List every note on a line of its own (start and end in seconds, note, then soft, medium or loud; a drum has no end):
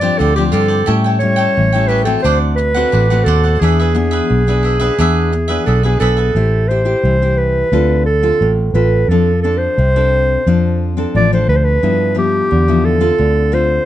0.00 0.10 G2 medium
0.00 0.17 G2 medium
0.00 0.31 F3 medium
0.00 0.31 C4 soft
0.00 0.32 D4 medium
0.00 0.19 G4 soft
0.00 0.18 C5 medium
0.00 0.20 D5 medium
0.00 0.18 D5 medium
0.18 0.49 D2 medium
0.18 0.85 D3 medium
0.18 0.36 F4 soft
0.18 0.36 G4 soft
0.18 0.35 A4 medium
0.18 0.36 C5 soft
0.18 0.35 D5 soft
0.36 0.83 F3 soft
0.36 0.83 C4 medium
0.36 0.84 D4 medium
0.36 0.44 G4 medium
0.36 0.51 G4 soft
0.36 0.52 C5 soft
0.36 0.53 D5 soft
0.52 0.83 G2 medium
0.52 0.69 F4 medium
0.52 0.69 G4 medium
0.52 0.92 A4 medium
0.52 0.68 C5 medium
0.52 0.67 D5 medium
0.68 0.85 G4 soft
0.68 0.86 C5 soft
0.68 0.86 D5 soft
0.86 1.53 A2 soft
0.86 1.47 A2 medium
0.86 1.17 G3 soft
0.86 1.17 C#4 soft
0.86 1.17 E4 medium
0.86 1.03 G4 medium
0.86 1.04 A4 medium
0.86 1.04 C#5 medium
0.86 1.03 G5 medium
1.04 1.19 A4 soft
1.04 1.20 C#5 soft
1.04 1.20 G5 soft
1.19 1.68 G3 soft
1.19 1.69 C#4 soft
1.19 1.89 C#5 medium
1.19 muted cavaquinho stroke soft
1.23 1.69 E4 medium
1.36 1.72 A4 medium
1.36 1.72 C#5 soft
1.36 1.71 G5 medium
1.57 2.16 A1 medium
1.57 2.22 E3 medium
1.72 2.03 G3 soft
1.72 2.04 C#4 soft
1.72 2.04 E4 soft
1.72 1.88 A4 soft
1.72 1.89 C#5 soft
1.72 1.89 G5 soft
1.88 2.06 G4 soft
1.88 2.06 A4 soft
1.88 2.04 B4 medium
1.88 2.05 C#5 soft
1.88 2.04 G5 soft
2.04 2.70 A3 medium
2.04 2.71 C4 medium
2.04 2.71 F#4 medium
2.04 2.22 A4 medium
2.04 2.24 A4 soft
2.04 2.23 C#5 soft
2.04 2.23 G5 medium
2.22 2.83 D2 medium
2.22 2.91 D3 soft
2.22 2.57 D4 medium
2.22 2.38 C5 medium
2.22 2.57 C5 medium
2.22 2.58 D5 medium
2.22 2.58 F#5 medium
2.56 3.26 B4 medium
2.56 muted cavaquinho stroke soft
2.74 3.05 A3 medium
2.74 3.05 C4 medium
2.74 3.06 F#4 medium
2.74 2.91 C5 soft
2.74 2.92 D5 medium
2.74 2.92 F#5 medium
2.92 3.23 A1 medium
2.92 3.59 A2 medium
2.92 3.09 D4 soft
2.92 3.09 C5 soft
2.92 3.10 D5 soft
2.92 3.09 F#5 soft
3.10 3.57 A3 medium
3.10 3.57 C4 medium
3.10 3.57 F#4 medium
3.10 3.27 C5 soft
3.10 3.27 D5 soft
3.10 3.27 F#5 soft
3.24 3.56 D#2 medium
3.24 3.43 D4 medium
3.24 3.62 A4 medium
3.24 3.44 C5 medium
3.24 3.43 D5 medium
3.29 3.42 F#5 medium
3.43 3.61 C5 soft
3.43 3.61 D5 soft
3.43 3.60 F#5 soft
3.60 4.20 E2 medium
3.60 4.27 E3 soft
3.60 3.91 B3 soft
3.60 3.78 D4 medium
3.60 3.91 D4 soft
3.60 5.66 G#4 medium
3.60 3.79 G#4 medium
3.60 3.92 G#4 medium
3.60 3.79 B4 medium
3.60 3.78 E5 medium
3.79 3.94 G#4 soft
3.79 3.94 B4 soft
3.79 3.95 E5 soft
3.95 4.42 B3 soft
3.95 4.42 D4 medium
3.95 4.42 G#4 soft
3.95 muted cavaquinho stroke soft
4.11 4.46 G#4 soft
4.11 4.46 B4 medium
4.11 4.45 E5 medium
4.30 4.89 B1 medium
4.30 4.95 B2 soft
4.47 4.77 B3 soft
4.47 4.77 D4 medium
4.47 4.77 G#4 soft
4.47 4.63 G#4 soft
4.47 4.64 B4 soft
4.47 4.64 E5 soft
4.63 4.80 D4 soft
4.63 4.81 G#4 soft
4.63 4.80 B4 soft
4.63 4.78 E5 soft
4.80 4.93 B3 medium
4.80 4.93 D4 soft
4.80 4.93 G#4 medium
4.80 4.98 G#4 soft
4.80 4.97 B4 medium
4.80 4.97 E5 medium
4.98 5.57 E2 medium
4.98 5.64 E3 soft
4.98 5.32 B3 medium
4.98 5.31 D4 medium
4.98 5.32 D4 soft
4.98 5.32 G#4 medium
4.98 5.32 B4 medium
4.98 5.32 E5 medium
5.32 muted cavaquinho stroke soft
5.48 5.79 B3 soft
5.48 5.79 D4 medium
5.48 5.66 G#4 soft
5.48 5.79 G#4 medium
5.48 5.66 B4 medium
5.48 5.65 E5 medium
5.66 5.97 B1 medium
5.66 6.33 B2 soft
5.66 5.83 D4 soft
5.66 5.83 G#4 soft
5.66 5.83 A4 medium
5.66 5.83 B4 soft
5.66 5.82 E5 soft
5.83 6.31 B3 medium
5.83 6.31 D4 medium
5.83 6.00 G#4 medium
5.83 6.00 G#4 soft
5.83 6.31 G#4 medium
5.83 6.00 B4 soft
5.83 6.00 E5 soft
6.00 6.30 B1 medium
6.00 6.17 D4 medium
6.00 6.17 G#4 medium
6.00 6.70 A4 medium
6.00 6.17 B4 medium
6.00 6.16 E5 medium
6.17 6.35 G#4 soft
6.17 6.34 B4 soft
6.17 6.34 E5 soft
6.35 6.94 A1 medium
6.35 7.01 A3 medium
6.35 6.65 E4 soft
6.35 6.65 G4 soft
6.35 6.65 C5 medium
6.68 6.81 E4 soft
6.68 6.81 G4 soft
6.68 7.39 C5 medium
6.68 6.81 C5 soft
6.85 7.15 E4 medium
6.85 7.15 G4 medium
6.85 7.16 C5 medium
7.04 7.62 C2 medium
7.04 7.70 E3 medium
7.22 7.68 E4 soft
7.22 7.68 G4 medium
7.22 7.68 C5 medium
7.38 8.05 B4 medium
7.72 8.31 D2 medium
7.72 8.38 D3 medium
7.72 8.05 C4 soft
7.72 8.05 F4 medium
7.72 8.05 A4 medium
8.06 8.57 A4 medium
8.23 8.69 C4 soft
8.23 8.70 F4 medium
8.23 8.70 A4 medium
8.41 8.70 A1 medium
8.41 9.07 A2 medium
8.74 9.04 A1 medium
8.74 9.07 C4 soft
8.74 9.07 F4 soft
8.74 9.07 A4 medium
8.74 9.11 B4 medium
9.08 9.67 F2 medium
9.08 9.75 F3 medium
9.08 9.31 C4 soft
9.08 9.31 D4 soft
9.08 9.41 A4 medium
9.08 9.31 A4 medium
9.42 9.76 C4 soft
9.42 9.76 D4 medium
9.42 9.59 A4 medium
9.42 9.76 A4 medium
9.58 10.86 C5 medium
9.78 10.36 C2 medium
9.78 10.43 C3 medium
9.96 10.41 C4 medium
9.96 10.41 D4 soft
9.96 10.42 A4 soft
10.47 11.05 F2 medium
10.47 11.12 F3 medium
10.47 10.93 C4 medium
10.47 10.93 D4 medium
10.47 10.93 A4 medium
10.97 11.26 C4 medium
10.97 11.26 D4 medium
10.97 11.26 A4 medium
11.15 11.44 A1 medium
11.15 11.80 F3 medium
11.15 11.31 D5 medium
11.32 11.78 C4 medium
11.32 11.78 D4 medium
11.32 11.78 A4 medium
11.32 11.49 C5 medium
11.48 11.77 D2 medium
11.48 11.57 B4 medium
11.56 11.65 C5 medium
11.64 12.18 B4 medium
11.83 12.48 G2 soft
11.83 12.41 G2 medium
11.83 12.12 F3 soft
11.83 12.12 B3 medium
11.83 12.12 E4 medium
12.15 12.62 F3 soft
12.15 12.62 B3 medium
12.15 12.63 E4 medium
12.15 12.87 G4 medium
12.51 13.10 E2 medium
12.51 13.16 D3 medium
12.68 12.97 F3 medium
12.68 12.98 B3 medium
12.68 12.98 E4 medium
12.85 13.55 A4 medium
13.01 13.48 C4 medium
13.01 13.48 F4 soft
13.01 13.48 A4 medium
13.18 13.78 D2 medium
13.18 13.84 D3 medium
13.52 13.85 C4 medium
13.52 13.85 F4 medium
13.52 13.85 A4 medium
13.52 13.85 C5 medium